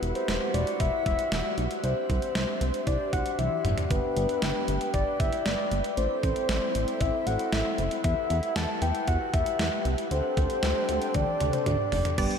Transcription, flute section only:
Already playing: E4 F#4 G4 F#5
1.84 D4 G4 C5 E5
3.91 B4 G5
5.97 C4 E4 A4 E5
8.04 G4 B4 F#5
10.11 D4 A4 G5
12.18 D4 G4 B4 G5

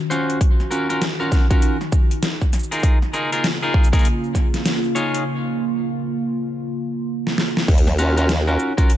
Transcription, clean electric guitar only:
0.10 C#4 F4 F#4 C5
0.71 C#4 F4 F#4 A#4
0.89 C#4 F4 F#4 A#4
1.20 C#4 F4 F#4 A#4
1.50 C#4 F4 F#4 A#4
2.71 D#4 F4 G#4 A#4
3.13 D#4 F4 G#4 A#4
3.32 D#4 F4 G#4 A#4
3.62 D#4 F4 G#4 A#4
3.93 D#4 F4 G#4 A#4
4.95 D#4 F4 G#4 C#5
7.98 C#4 F4 F#4 A#4
8.17 C#4 F4 F#4 A#4
8.47 C#4 F4 F#4 A#4
8.77 C#4 F4 F#4 A#4

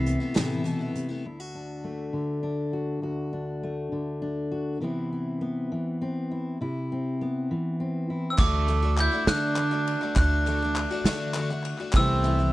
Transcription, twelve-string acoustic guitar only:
Already playing: A3 B3 E4
0.20 A3 B3 E4
0.34 C3 E3 A3 B3 E4
0.64 E3 A3 B3 E4
0.79 A3 B3 E4
1.09 A3 B3 E4
8.37 D3 A3 D4 F#4
8.68 D3 A3 D4 F#4
8.82 A3 D4 F#4
9.11 A3 D4 F#4
9.27 D3 A3 D4 F#4
9.56 D3 A3 D4 F#4
9.71 A3 D4 F#4
10.01 A3 D4 F#4
10.16 D3 A3 D4 F#4
10.46 D3 A3 D4 F#4
10.62 A3 D4 F#4
10.91 A3 D4 F#4
11.06 D3 A3 D4 F#4
11.35 D3 A3 D4 F#4
11.50 A3 D4 F#4
11.80 A3 D4 F#4
11.95 C3 E3 A3 B3 E4
12.24 E3 A3 B3 E4
12.39 A3 B3 E4

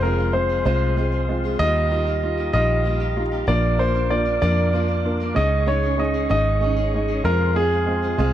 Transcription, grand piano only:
0.03 A#4
0.33 C5
0.66 C5
1.59 D#5
2.53 D#5
3.48 D5
3.79 C5
4.10 D5
4.42 D5
5.36 D#5
5.68 C#5
5.99 D#5
6.31 D#5
7.25 A#4
7.56 G#4
8.19 G#4

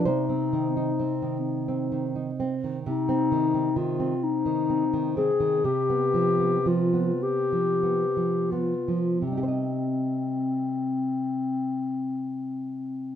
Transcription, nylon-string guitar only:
0.05 C3 C5
0.29 C4
0.53 D#3
0.77 D#4
0.99 C4
1.22 D#3
1.68 C4
1.92 D#3
2.16 D#4
2.40 C4
2.64 D#3
2.86 C3
3.09 C4
3.32 D#3
3.54 C4
3.76 D#3
4.00 C4
4.46 D#3
4.70 C4
4.93 D#3
5.17 C4
5.40 D#3
5.64 C3
5.90 B3
6.14 F3
6.40 B3
6.66 F3
6.94 B3
7.53 F3
7.83 B3
8.17 F3
8.52 B3
8.88 F3
9.22 C3
9.27 G3
9.32 D#4
9.37 G4
9.43 C5
9.48 D#5

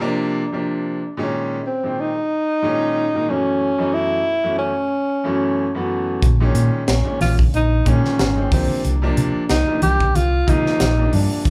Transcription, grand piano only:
0.00 C3 F3 A#3 D4
0.52 C3 F3 A#3 D4
1.17 A#2 D#3 G#3 C#4
1.65 G#3 C#4
1.83 A#2 D#3 G#3 C4
2.15 G#3 D#4
2.62 A#2 D#3 G#3 C#4
3.14 A#2 D#3 G#3 A#3
3.28 F#2 B2 E3 A3 C#4
3.78 F#2 B2 E3 A3 D#4
4.25 A3 B3
4.43 F#2 B2 E3 A3 C#4
4.77 A3 C#4
5.24 F#2 B2 E3 A3 C#4
5.74 F#2 B2 E3 A3 B3
6.40 A#2 D#3 G#3 C#4
6.87 G#3 C#4
7.04 A#2 D#3 G#3 C#4
7.38 G#3 C#4
7.85 A#2 D#3 G#3 C#4
8.36 A#2 D#3 G#3 C4
8.52 C3 F3 A#3 D4
9.02 C3 F3 A#3 D4
9.49 A#3 D4
9.67 C3 F3 A#3 D4
10.00 A#3 D4
10.47 C3 F3 A#3 F4
10.97 C3 F3 A#3 D4

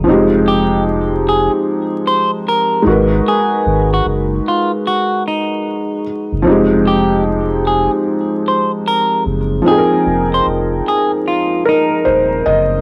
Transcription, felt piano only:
0.04 F3 C4
0.09 D#4 G4
0.14 G#3
2.82 G#3 D#4
2.87 F#4 A#4
2.92 B4
6.42 F3 C4
6.47 D#4 G4
6.52 G#3
9.62 F3 C4
9.66 D#4 G5
9.71 G#4
9.78 A#4
11.65 A#4
12.05 C5
12.46 D#5

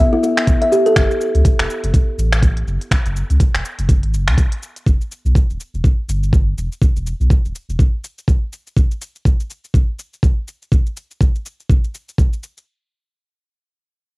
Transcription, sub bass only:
0.96 F#1
1.35 C#2
1.59 E1
1.84 F#1
2.18 A1
2.67 F#1
3.05 F#1
3.30 C#2
3.54 E1
3.79 F#1
4.03 A1
4.13 F#1
4.27 C#2
4.86 E1
5.25 B1
5.50 D1
5.74 E1
6.08 G1
6.57 E1
6.96 E1
7.20 B1
7.45 D1
7.69 E1

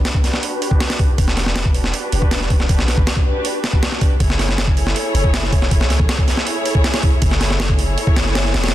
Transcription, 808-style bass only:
1.18 E1
2.13 E1
2.50 D1
2.79 B1
2.97 G1
4.20 F#1
5.14 F#1
5.52 E1
5.80 C#2
5.99 A1
7.22 F#1
8.17 F#1
8.54 E1

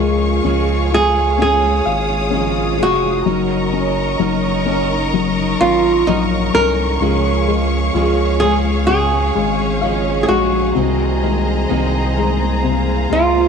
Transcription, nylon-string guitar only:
Already playing: A#4
0.94 G#4
1.42 G#4
2.83 F#4
5.61 F4
6.07 D#4
6.55 A#4
8.40 G#4
8.87 G#4
10.23 G#4
10.28 F#4
13.13 F4

